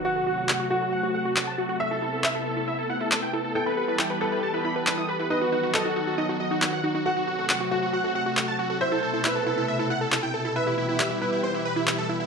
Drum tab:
CP |--x---x-|--x---x-|--x---x-|--x---x-|

CP |--x---x-|--x---x-|--x---x-|